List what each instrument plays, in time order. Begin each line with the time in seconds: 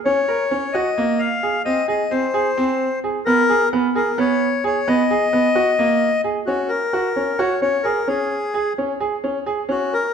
0.05 grand piano C#4, accordion C#5
0.28 grand piano A#4
0.51 grand piano C#4
0.73 grand piano F#4, accordion D#5
0.98 grand piano A#3
1.19 accordion F5
1.43 grand piano G#4
1.65 grand piano C4, accordion D#5
1.88 grand piano G#4, accordion D#5
2.11 grand piano C4, accordion C5
2.34 grand piano G#4
2.57 grand piano C4
3.04 grand piano G#4
3.26 grand piano B3, accordion A#4
3.49 grand piano G#4
3.73 grand piano B3
3.95 grand piano G#4, accordion A#4
4.18 grand piano B3, accordion C#5
4.64 grand piano G#4, accordion C#5
4.88 grand piano B3, accordion D#5
5.11 grand piano G#4
5.33 grand piano B3
5.55 grand piano F#4
5.79 grand piano A#3
6.24 grand piano G#4
6.47 grand piano C#4, accordion F#4
6.69 accordion A#4
6.93 grand piano F#4
7.16 grand piano C#4
7.38 grand piano F#4, accordion C#5
7.62 grand piano C#4, accordion C#5
7.83 grand piano G#4, accordion A#4
8.08 grand piano C#4, accordion G#4
8.54 grand piano G#4
8.78 grand piano C#4
9.00 grand piano G#4
9.24 grand piano C#4
9.46 grand piano G#4
9.69 grand piano C#4, accordion F#4
9.93 accordion A#4